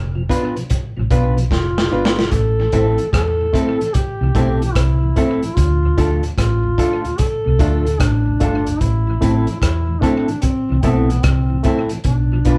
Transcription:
Already playing: fingered electric bass F1
0.15 tonewheel organ B2 F3
0.30 reed electric piano B3 D4 F4 B4, tonewheel organ B3 D4 F4, clean electric guitar D4 F4 B4, kick, closed hi-hat
0.56 tonewheel organ B2 F3, muted clean electric guitar stroke, closed hi-hat
0.70 kick, closed hi-hat
0.97 fingered electric bass A1, tonewheel organ B2 F3
1.11 fingered electric bass B1, tonewheel organ B3 D4 F4, reed electric piano B3 D4 F4 B4, clean electric guitar D4 F4 B4, kick, closed hi-hat
1.37 tonewheel organ B2 F3, muted clean electric guitar stroke, closed hi-hat
1.51 fingered electric bass F1, duduk F4, kick, snare
1.78 tonewheel organ B2 F3, snare
1.92 fingered electric bass G1, tonewheel organ B3 D4 F4, reed electric piano B3 D4 F4 B4, clean electric guitar D4 F4 B4
2.05 snare
2.19 tonewheel organ B2 F3, snare
2.31 fingered electric bass A1, duduk A4, kick, closed hi-hat
2.59 tonewheel organ A2 E3
2.72 fingered electric bass A1, reed electric piano A3 C4 E4 A4, tonewheel organ A3 C4 E4, clean electric guitar C4 E4 A4, kick, closed hi-hat
2.98 tonewheel organ A2 E3, closed hi-hat
3.12 fingered electric bass E2, duduk A4, kick, cross-stick, closed hi-hat
3.41 tonewheel organ A2 E3
3.53 reed electric piano A3 C4 E4 A4, tonewheel organ A3 C4 E4, clean electric guitar C4 E4 A4, kick, closed hi-hat
3.80 tonewheel organ A2 E3, muted clean electric guitar stroke, closed hi-hat
3.93 duduk G4, kick, closed hi-hat
4.21 fingered electric bass C2, tonewheel organ A2 E3
4.35 fingered electric bass B1, reed electric piano A3 C4 E4 A4, tonewheel organ A3 C4 E4, clean electric guitar C4 E4 A4, kick, closed hi-hat
4.62 tonewheel organ A2 E3, muted clean electric guitar stroke, closed hi-hat
4.73 fingered electric bass C2, duduk E4, kick, cross-stick, closed hi-hat
5.03 tonewheel organ A2 E3
5.16 reed electric piano A3 C4 E4 A4, tonewheel organ A3 C4 E4, clean electric guitar C4 E4 A4, kick, closed hi-hat
5.42 tonewheel organ A2 E3, closed hi-hat
5.55 fingered electric bass D2, duduk F4, kick, closed hi-hat
5.83 tonewheel organ D2 A2
5.97 fingered electric bass D2, reed electric piano A3 D4 F4 A4, tonewheel organ A3 D4 F4, clean electric guitar D4 F4 A4, kick, closed hi-hat
6.23 tonewheel organ D2 A2, closed hi-hat
6.37 fingered electric bass A1, duduk F4, kick, cross-stick, closed hi-hat
6.64 tonewheel organ D2 A2
6.78 tonewheel organ A3 D4 F4, reed electric piano A3 D4 F4 A4, clean electric guitar D4 F4 A4, kick, closed hi-hat
7.04 tonewheel organ D2 A2, muted clean electric guitar stroke, closed hi-hat
7.18 duduk A4, kick, closed hi-hat
7.45 fingered electric bass C2, tonewheel organ D2 A2
7.59 fingered electric bass D2, reed electric piano A3 D4 F4 A4, tonewheel organ A3 D4 F4, clean electric guitar D4 F4 A4, kick, closed hi-hat
7.85 tonewheel organ D2 A2, muted clean electric guitar stroke, closed hi-hat
7.99 fingered electric bass A1, duduk D4, kick, cross-stick, closed hi-hat
8.26 tonewheel organ D2 A2
8.40 fingered electric bass G1, reed electric piano A3 D4 F4 A4, tonewheel organ A3 D4 F4, clean electric guitar D4 F4 A4, kick, closed hi-hat
8.66 tonewheel organ D2 A2, closed hi-hat
8.80 fingered electric bass A1, duduk E4, kick, closed hi-hat
9.07 tonewheel organ A2 E3
9.21 fingered electric bass A1, reed electric piano A3 C4 E4 A4, tonewheel organ A3 C4 E4, clean electric guitar C4 E4 A4, kick, closed hi-hat
9.47 tonewheel organ A2 E3, closed hi-hat
9.60 fingered electric bass E2, duduk E4, kick, cross-stick, closed hi-hat
9.88 tonewheel organ A2 E3
10.01 reed electric piano A3 C4 E4 A4, tonewheel organ A3 C4 E4, clean electric guitar C4 E4 A4, duduk D4, kick, closed hi-hat
10.28 tonewheel organ A2 E3, muted clean electric guitar stroke, closed hi-hat
10.41 duduk C4, kick, closed hi-hat
10.69 fingered electric bass C2, tonewheel organ A2 E3
10.82 fingered electric bass B1, reed electric piano A3 C4 E4 A4, tonewheel organ A3 C4 E4, duduk B3, clean electric guitar C4 E4 A4, kick, closed hi-hat
11.10 tonewheel organ A2 E3, muted clean electric guitar stroke, closed hi-hat
11.23 fingered electric bass C2, duduk C4, kick, cross-stick, closed hi-hat
11.50 tonewheel organ A2 E3
11.63 reed electric piano A3 C4 E4 A4, tonewheel organ A3 C4 E4, clean electric guitar C4 E4 A4, kick, closed hi-hat
11.89 tonewheel organ A2 E3, closed hi-hat
12.04 fingered electric bass B1, duduk D4, kick, closed hi-hat
12.32 tonewheel organ B2 F3
12.45 fingered electric bass B1, reed electric piano B3 D4 F4 B4, tonewheel organ B3 D4 F4, clean electric guitar D4 F4 B4, kick, closed hi-hat

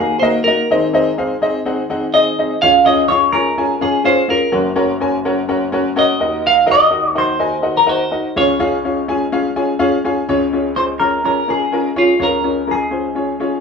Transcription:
Already playing: upright piano D#2 D#3 A#3, clean electric guitar G#4
0.00 upright piano D#4 F#4 A#4 F5
0.19 upright piano A#3 D#4 F#4 A#4 D#5, clean electric guitar C5
0.44 upright piano A#3 D#4 F#4 A#4 D#5, clean electric guitar A#4
0.71 upright piano G#1 G#2 C4 D#4 G#4 C5 D#5
0.93 upright piano C4 D#4 G#4 C5 D#5
1.18 upright piano C4 D#4 G#4 C5 F5
1.42 upright piano C4 D#4 G#4 C5 D#5
1.65 upright piano C4 D#4 G#4 C5 F#5
1.90 upright piano C4 D#4 G#4 C5 F#5
2.14 upright piano C4 D#4 G#4 C5 D#5, clean electric guitar D#5
2.39 upright piano C4 D#4 G#4 C5 D#5
2.62 upright piano C#2 C#3 C#4 F4 G#4 C#5 F5, clean electric guitar F5
2.86 upright piano C#4 F4 G#4 C#5 D#5, clean electric guitar D#5
3.08 upright piano C#4 F4 G#4 C#5 F5, clean electric guitar C#5
3.32 upright piano C#4 F4 G#4 C#5 G#5, clean electric guitar A#4
3.58 upright piano C#4 F4 G#4 C#5 G#5
3.81 upright piano C#4 F4 G#4 C#5 F5, clean electric guitar G#4
4.04 upright piano C#4 F4 G#4 C#5 F5, clean electric guitar C5
4.28 upright piano C#4 F4 G#4 C#5 F5, clean electric guitar A#4
4.52 upright piano F#1 F#2 C#4 F#4 A#4 C#5 F#5
4.76 upright piano C#4 F#4 A#4 C#5 F#5
5.00 upright piano C#4 F#4 A#4 C#5 G#5
5.25 upright piano C#4 F#4 A#4 C#5 F#5
5.48 upright piano C#4 F#4 A#4 C#5 F#5
5.72 upright piano C#4 F#4 A#4 C#5 F#5
5.96 upright piano C#4 F#4 A#4 C#5 F#5, clean electric guitar D#5
6.20 upright piano D#2 D#3 D#4 F#4 A#4 D#5 F#5
6.47 clean electric guitar F5
6.66 upright piano D#4 F#4 A#4 D#5 F5
6.71 clean electric guitar D#5
6.90 upright piano D#4 F#4 A#4 D#5 F#5
7.15 upright piano D#4 F#4 A#4 D#5 F#5, clean electric guitar C5
7.39 upright piano D#4 F#4 A#4 D#5 G#5
7.62 upright piano D#4 F#4 A#4 D#5 F#5
7.77 clean electric guitar A#4
7.86 upright piano D#4 F#4 A#4 D#5 F#5, clean electric guitar C5
8.11 upright piano D#4 F#4 A#4 D#5 F#5
8.36 upright piano C#2 C#3 C#4 F4 G#4 C#5 F5, clean electric guitar C#5
8.59 upright piano C#4 F4 G#4 C#5 F5
8.85 upright piano C#4 F4 G#4 C#5 F5
9.08 upright piano C#4 F4 G#4 C#5 G#5
9.32 upright piano C#4 F4 G#4 C#5 F5
9.56 upright piano C#4 F4 G#4 C#5 G#5
9.79 upright piano C#4 F4 G#4 C#5 F5
10.04 upright piano C#4 F4 G#4 C#5 F5 G#5
10.29 upright piano C#2 C#3 C#4 F4 G#4 C#5
10.53 upright piano C#4 F4 G#4 C#5
10.76 upright piano C#4 F4 G#4 C5, clean electric guitar C5
11.00 upright piano C#4 F4 G#4 C#5, clean electric guitar A#4
11.24 upright piano C#4 F4 G#4 C#5, clean electric guitar A#4
11.48 upright piano C#4 F4 G#4 A#4, clean electric guitar G#4
11.72 upright piano C#4 F4 G#4 A#4
11.96 upright piano C#4 F4 G#4 C#5, clean electric guitar F4
12.19 upright piano C#2 C#3 C#4 F4 G#4 C#5, clean electric guitar A#4
12.44 upright piano C#4 F4 G#4 C#5
12.67 upright piano C#4 F4 G#4 A#4
12.71 clean electric guitar G#4
12.91 upright piano C#4 F4 G#4 C5
13.15 upright piano C#4 F4 G#4 C#5
13.40 upright piano C#4 F4 G#4 C#5

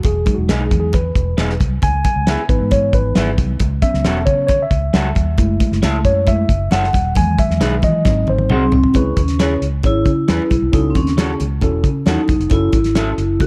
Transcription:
0.03 fingered electric bass E1, tine electric piano G#4, kick, closed hi-hat, muted conga
0.26 tine electric piano F#3 G#3 D#4, kick, closed hi-hat, muted conga
0.34 fingered electric bass E1, tine electric piano F#4
0.49 fingered electric bass B1, clean electric guitar B3 D#4 G#4, tine electric piano G#4, snare, closed hi-hat, high conga
0.71 fingered electric bass E2, kick, closed hi-hat, low conga
0.80 tine electric piano G#4
0.93 tine electric piano B4, kick, closed hi-hat, muted conga, low conga
1.15 fingered electric bass E1, kick, closed hi-hat, muted conga
1.37 fingered electric bass E1, clean electric guitar B3 D#4 G#4, snare, closed hi-hat, high conga
1.50 snare
1.60 fingered electric bass C2, kick, closed hi-hat, high conga
1.82 fingered electric bass C#2, tine electric piano G#5, kick, closed hi-hat, muted conga
2.05 tine electric piano G#5, kick, closed hi-hat, muted conga
2.16 fingered electric bass C#2
2.27 clean electric guitar B3 E4 G#4, snare, closed hi-hat, high conga
2.48 fingered electric bass G#1, tine electric piano E3 B3 D#4 B4, kick, closed hi-hat
2.61 fingered electric bass G#2
2.71 tine electric piano C#5, kick, closed hi-hat, muted conga
2.93 fingered electric bass G#1, tine electric piano B4, kick, closed hi-hat, muted conga
3.15 fingered electric bass G#1, clean electric guitar B3 E4 G#4, snare, closed hi-hat, high conga
3.38 fingered electric bass C2, kick, closed hi-hat, high conga
3.60 fingered electric bass C#2, kick, closed hi-hat, muted conga
3.82 tine electric piano F#3 B3 C#4 E5, kick, closed hi-hat, muted conga
3.94 fingered electric bass C#2, snare
4.04 fingered electric bass E1, clean electric guitar C#4 F#4 A4, snare, closed hi-hat, high conga
4.26 fingered electric bass C#3, tine electric piano C#5, kick, closed hi-hat, low conga
4.47 tine electric piano C#5, kick, closed hi-hat, muted conga, low conga
4.62 tine electric piano E5
4.71 fingered electric bass C#2, kick, closed hi-hat
4.93 fingered electric bass C#2, clean electric guitar C#4 F#4 A4, snare, closed hi-hat, high conga
5.15 fingered electric bass D#2, kick, closed hi-hat, high conga
5.38 fingered electric bass F#1, tine electric piano G#3 A3 E4, kick, closed hi-hat, muted conga
5.60 kick, closed hi-hat, muted conga
5.72 fingered electric bass F#1, snare
5.82 fingered electric bass C#2, clean electric guitar C#4 E4 A4, snare, closed hi-hat, high conga
6.05 fingered electric bass F#2, tine electric piano C#5, kick, closed hi-hat
6.27 tine electric piano G#3 A3 E4 E5, kick, closed hi-hat, muted conga
6.49 fingered electric bass F#1, kick, closed hi-hat
6.71 fingered electric bass F#1, clean electric guitar C#4 E4 A4, tine electric piano F#5, snare, closed hi-hat, high conga
6.84 snare
6.93 fingered electric bass D#1, kick, closed hi-hat, high conga
7.15 fingered electric bass E2, tine electric piano D#3 F#3 G#3 G#5, kick, closed hi-hat, muted conga
7.38 tine electric piano E5, kick, closed hi-hat, muted conga
7.50 fingered electric bass E2, snare
7.60 fingered electric bass B1, clean electric guitar D#4 G#4 B4, snare, closed hi-hat, high conga
7.82 fingered electric bass E3, tine electric piano D#5, kick, closed hi-hat, low conga
8.05 fingered electric bass G#1, tine electric piano F#3 C4 D#4, kick, snare, muted conga, low conga
8.27 fingered electric bass G#1, tine electric piano C5, high tom, muted conga
8.39 high tom
8.49 fingered electric bass C2, vibraphone C4, clean electric guitar D#4 F#4 C5, tine electric piano G#4, mid tom, high conga
8.72 fingered electric bass C2, vibraphone C4, floor tom, high conga
8.84 floor tom
8.94 fingered electric bass C#2, tine electric piano C#3 C#4 E4 G#4 B4, vibraphone C#4, kick, closed hi-hat, muted conga
9.17 fingered electric bass D#2, kick, closed hi-hat, muted conga
9.28 snare, closed hi-hat
9.38 tine electric piano C#4 E4 G#4 C#5, clean electric guitar E4 G#4 B4, snare, closed hi-hat, high conga
9.62 fingered electric bass C#2, closed hi-hat
9.83 fingered electric bass G#1, tine electric piano C#4 E4 G#4 C#5, vibraphone E4, kick, closed hi-hat, muted conga
10.05 fingered electric bass C#3, kick, closed hi-hat, muted conga
10.28 fingered electric bass E2, tine electric piano C#4 E4 G#4 B4, clean electric guitar E4 G#4 B4, snare, closed hi-hat, high conga
10.51 fingered electric bass B1, kick, closed hi-hat, high conga
10.62 fingered electric bass C2
10.72 fingered electric bass C#2, tine electric piano C#3 C#4 E4 F#4 A4, vibraphone D#4, kick, closed hi-hat, muted conga
10.90 vibraphone C4
10.95 fingered electric bass D#2, vibraphone C#4, kick, closed hi-hat, muted conga
11.07 snare, closed hi-hat
11.17 tine electric piano C#4 E4 F#4 G#4, clean electric guitar C#4 F#4 A4, snare, closed hi-hat, high conga
11.40 fingered electric bass C#2, closed hi-hat, low conga
11.61 fingered electric bass E1, tine electric piano C#4 E4 F#4 A4, kick, closed hi-hat, muted conga, low conga
11.84 fingered electric bass C#3, kick, closed hi-hat
12.06 fingered electric bass E2, tine electric piano C#4 E4 F#4 A4, clean electric guitar C#4 F#4 A4, vibraphone D#4, snare, closed hi-hat, high conga
12.28 fingered electric bass E1, kick, closed hi-hat, high conga
12.40 fingered electric bass F1, closed hi-hat
12.50 fingered electric bass F#1, tine electric piano C#4 E4 F#4 A4, vibraphone E4, kick, closed hi-hat, muted conga
12.73 fingered electric bass G#1, kick, closed hi-hat, muted conga
12.84 snare, closed hi-hat
12.95 tine electric piano C#4 E4 F#4 A4, clean electric guitar C#4 E4 A4, snare, closed hi-hat, high conga
13.18 fingered electric bass F#1, closed hi-hat
13.40 fingered electric bass C#2, tine electric piano C#4 E4 F#4 A4, vibraphone F#4, kick, closed hi-hat, muted conga

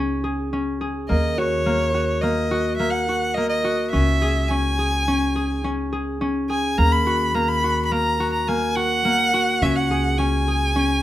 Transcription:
Already playing: upright bass C#2, harp A#3 C#4 F#4 G#4
0.24 harp G#4
0.53 harp C#4
0.81 harp G#4
1.09 upright bass D#2, harp A#3, violin D#5
1.38 harp F#4, violin C#5
1.66 harp A#3
1.94 harp F#4
2.21 harp A#3, violin D#5
2.51 harp F#4
2.77 harp A#3, violin E5
2.90 violin F#5
3.09 harp F#4
3.34 harp A#3, violin D#5
3.49 violin D#5
3.64 harp F#4
3.91 upright bass C#2, harp C#4, violin E5
4.22 harp G#4
4.48 harp C#4, violin G#5
4.79 harp G#4
5.08 harp C#4
5.36 harp G#4
5.64 harp C#4
5.93 harp G#4
6.21 harp C#4
6.50 harp G#4, violin G#5
6.78 upright bass D#2, harp A#3, violin A#5
6.92 violin B5
7.07 harp F#4
7.34 harp A#3, violin A#5
7.48 violin B5
7.64 harp F#4
7.85 violin B5
7.92 harp A#3, violin A#5
8.20 harp F#4
8.33 violin A#5
8.47 harp A#3, violin G#5
8.76 harp F#4, violin F#5
9.05 harp A#3
9.34 harp F#4
9.62 upright bass C#2, harp C#4, violin E5
9.75 violin F#5
9.91 harp G#4
10.18 harp C#4, violin G#5
10.48 harp G#4
10.76 harp C#4

